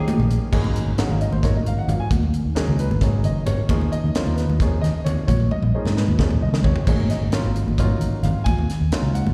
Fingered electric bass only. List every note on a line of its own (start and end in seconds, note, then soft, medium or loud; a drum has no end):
0.07 muted fingered electric bass stroke soft
0.18 0.37 A#1 medium
0.53 0.72 G#1 medium
0.86 0.96 G#1 medium
0.98 muted fingered electric bass stroke soft
1.09 1.28 G#1 medium
1.31 1.60 G#1 medium
1.66 1.75 G#1 medium
1.77 muted fingered electric bass stroke soft
1.88 1.98 G#1 medium
2.11 2.30 D#2 medium
2.45 2.55 D#2 medium
2.68 2.87 C#2 medium
2.90 3.25 G#1 medium
3.25 3.46 F#1 medium
3.46 3.56 G#1 medium
3.58 muted fingered electric bass stroke soft
3.69 3.88 D#2 medium
3.92 muted fingered electric bass stroke soft
4.04 4.13 D#2 medium
4.15 muted fingered electric bass stroke soft
4.26 4.45 D#2 medium
4.49 4.78 D#2 medium
4.83 4.92 D#2 medium
4.94 muted fingered electric bass stroke soft
5.06 5.15 D#2 medium
5.28 5.47 A#1 medium
5.62 5.72 A#1 medium
5.85 6.04 G#2 medium
6.08 6.44 D#2 medium
6.42 6.65 C#2 medium
6.65 6.74 D#2 medium
6.76 muted fingered electric bass stroke soft
6.87 7.06 G#1 medium
7.09 muted fingered electric bass stroke soft
7.21 7.31 G#1 medium
7.44 7.63 G#1 medium
7.66 7.95 G#1 medium
8.00 8.10 G#1 medium
8.11 muted fingered electric bass stroke soft
8.23 8.33 G#1 medium
8.46 8.65 D#2 loud
8.80 8.90 D#2 medium
9.02 9.22 C#2 medium
9.25 9.34 G#1 medium